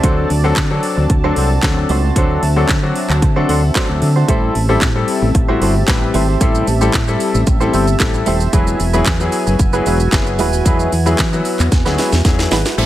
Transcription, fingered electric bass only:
0.03 D2
0.30 D2
0.57 D3
0.97 D2
1.10 D2
1.36 C2
1.63 D2
1.89 C#2
2.16 D2
2.42 D2
2.69 D3
3.09 D2
3.22 D3
3.49 D2
3.89 D2
4.02 D3
4.29 A1
4.55 A1
4.81 A2
5.22 A1
5.35 A1
5.61 G1
5.88 A1
6.14 G#1
6.41 A1
6.67 A1
6.94 A2
7.34 A1
7.73 G1
8.00 A1
8.27 D#1
8.53 E1
8.80 E1
9.06 E2
9.47 F#1
9.59 F#1
9.86 E1
10.12 F#1
10.39 D#1
10.66 E2
10.92 E2
11.19 E3
11.60 E2
11.72 E2
11.86 D2
12.12 E2
12.51 G#1
12.78 A1

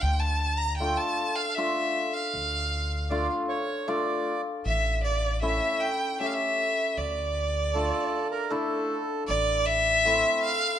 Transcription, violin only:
0.01 G5
0.20 A5
0.58 A#5
0.77 G5
0.97 A5
1.36 F5
1.54 E5
2.13 F5
4.66 E5
5.04 D5
5.42 E5
5.80 G5
6.20 E5
6.27 F5
6.34 E5
6.98 D5
9.28 D5
9.66 E5
10.43 F5

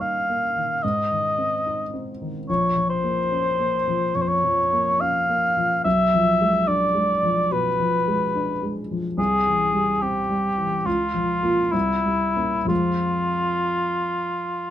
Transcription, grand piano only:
Already playing: G2 D#3 A#3
0.00 D#4
0.30 A#3
0.56 D#3
0.84 G#2
1.11 D#3
1.38 C4
1.66 D#4
1.94 C4
2.22 D#3
2.50 A#1
2.76 F3
3.03 A#3
3.32 C#4
3.59 A#3
3.88 F3
4.15 F2
4.44 F3
4.73 A#3
5.01 C#4
5.29 A#3
5.57 F3
5.85 B1
6.14 F3
6.41 G#3
6.67 D4
6.95 G#3
7.23 F3
7.51 B2
7.80 F3
8.08 G#3
8.35 D4
8.63 G#3
8.91 F3
9.18 C2
9.46 E3
9.74 G3
10.02 C4
10.30 G3
10.58 E3
10.86 C#2
11.14 F3
11.43 A#3 F4
11.73 C2
12.05 G3
12.36 A#3 C#4
12.65 F2 F3 G#3 C4

